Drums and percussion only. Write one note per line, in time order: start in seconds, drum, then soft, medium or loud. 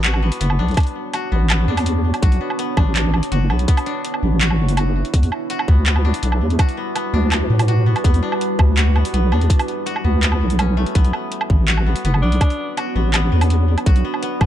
0.04 clap loud
0.04 closed hi-hat medium
0.14 low woodblock medium
0.32 open hi-hat medium
0.41 closed hi-hat medium
0.50 low woodblock medium
0.68 closed hi-hat soft
0.71 closed hi-hat soft
0.74 kick loud
0.74 closed hi-hat soft
0.77 closed hi-hat medium
0.77 low woodblock medium
0.80 closed hi-hat soft
0.83 closed hi-hat soft
0.83 open hi-hat soft
1.13 closed hi-hat medium
1.13 low woodblock medium
1.50 clap loud
1.50 closed hi-hat medium
1.50 low woodblock medium
1.77 open hi-hat medium
1.77 low woodblock medium
1.86 closed hi-hat medium
2.14 closed hi-hat soft
2.14 low woodblock medium
2.22 kick loud
2.22 closed hi-hat medium
2.32 open hi-hat soft
2.50 low woodblock medium
2.59 closed hi-hat medium
2.77 kick loud
2.77 low woodblock medium
2.96 clap loud
2.96 closed hi-hat medium
3.14 low woodblock medium
3.23 open hi-hat medium
3.32 closed hi-hat medium
3.50 low woodblock medium
3.59 closed hi-hat soft
3.68 kick loud
3.68 closed hi-hat medium
3.77 open hi-hat soft
3.77 low woodblock medium
3.86 closed hi-hat soft
4.05 closed hi-hat medium
4.14 low woodblock soft
4.41 clap loud
4.41 closed hi-hat medium
4.50 low woodblock soft
4.69 open hi-hat medium
4.77 closed hi-hat medium
4.77 low woodblock medium
5.05 closed hi-hat soft
5.14 kick loud
5.14 closed hi-hat medium
5.23 open hi-hat soft
5.32 low woodblock medium
5.50 closed hi-hat medium
5.59 low woodblock medium
5.68 kick loud
5.86 clap loud
5.86 closed hi-hat medium
5.96 low woodblock medium
6.14 open hi-hat medium
6.23 closed hi-hat medium
6.32 low woodblock medium
6.50 closed hi-hat soft
6.59 kick loud
6.59 closed hi-hat medium
6.59 low woodblock medium
6.69 open hi-hat soft
6.96 closed hi-hat medium
6.96 low woodblock medium
7.32 clap loud
7.32 closed hi-hat medium
7.32 low woodblock medium
7.59 open hi-hat medium
7.59 low woodblock medium
7.68 closed hi-hat medium
7.96 closed hi-hat soft
7.96 low woodblock medium
8.04 kick loud
8.04 closed hi-hat medium
8.14 open hi-hat soft
8.32 low woodblock medium
8.41 closed hi-hat medium
8.59 kick loud
8.59 low woodblock medium
8.77 clap loud
8.77 closed hi-hat medium
8.96 low woodblock medium
9.05 open hi-hat medium
9.14 closed hi-hat medium
9.32 low woodblock medium
9.41 closed hi-hat soft
9.50 kick loud
9.50 closed hi-hat medium
9.59 open hi-hat soft
9.59 low woodblock medium
9.68 closed hi-hat soft
9.87 closed hi-hat medium
9.96 low woodblock medium
10.23 clap loud
10.23 closed hi-hat medium
10.32 low woodblock medium
10.50 open hi-hat medium
10.59 closed hi-hat medium
10.59 low woodblock medium
10.86 closed hi-hat soft
10.95 kick loud
10.95 closed hi-hat medium
11.04 open hi-hat soft
11.13 low woodblock medium
11.32 closed hi-hat medium
11.41 low woodblock medium
11.50 kick loud
11.68 clap loud
11.68 closed hi-hat medium
11.77 low woodblock medium
11.96 open hi-hat medium
12.05 closed hi-hat medium
12.14 low woodblock medium
12.32 closed hi-hat soft
12.41 kick loud
12.41 closed hi-hat medium
12.41 low woodblock medium
12.50 open hi-hat soft
12.77 closed hi-hat medium
12.77 low woodblock medium
13.14 clap loud
13.14 closed hi-hat medium
13.14 low woodblock medium
13.41 open hi-hat medium
13.41 low woodblock medium
13.50 closed hi-hat medium
13.78 closed hi-hat soft
13.78 low woodblock medium
13.86 kick loud
13.86 closed hi-hat medium
13.96 open hi-hat soft
14.14 low woodblock medium
14.23 closed hi-hat medium
14.41 kick loud
14.41 low woodblock medium